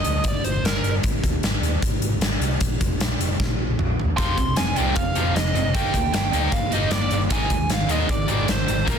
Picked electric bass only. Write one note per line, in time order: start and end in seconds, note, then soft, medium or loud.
0.06 0.20 D2 medium
0.24 0.39 G1 medium
0.45 0.59 G1 medium
0.64 0.78 G1 medium
0.83 0.98 G1 medium
1.04 1.18 G#1 medium
1.24 1.38 D#2 medium
1.43 1.57 G#1 medium
1.61 1.76 D#2 medium
1.82 1.96 G#1 medium
2.00 2.15 G#1 medium
2.21 2.35 G#1 medium
2.40 2.55 C2 medium
2.61 2.75 A#1 medium
2.80 2.94 F1 medium
3.00 3.14 A#1 loud
3.20 3.34 F1 medium
3.40 3.54 A#1 medium
3.60 3.74 A#1 medium
3.80 3.93 A#1 medium
3.99 4.13 D#2 medium
4.18 4.32 F1 medium
4.37 4.51 C2 medium
4.59 4.72 F1 medium
4.79 4.92 C2 medium
4.97 5.11 F1 medium
5.16 5.30 F1 medium
5.36 5.50 F1 medium
5.55 5.69 F#1 medium
5.75 5.89 G1 medium
5.94 6.08 D2 medium
6.13 6.27 G1 medium
6.32 6.47 D2 medium
6.52 6.67 G1 medium
6.72 6.86 G1 medium
6.92 7.06 G1 medium
7.11 7.25 G1 medium
7.31 7.45 G#1 medium
7.50 7.64 D#2 medium
7.69 7.83 G#1 medium
7.90 8.04 D#2 medium
8.09 8.23 G#1 medium
8.29 8.43 G#1 medium
8.48 8.62 G#1 medium
8.69 8.83 G#1 medium
8.87 8.99 A#1 medium